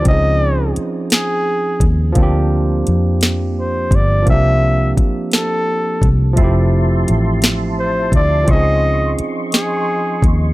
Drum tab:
HH |x-xx-x|x-xx-x|x-xx-x|x-xx-x|
SD |---o--|---o--|---o--|---o--|
BD |o----o|o----o|o-o--o|o----o|

HH |x-xx-x|
SD |---o--|
BD |o----o|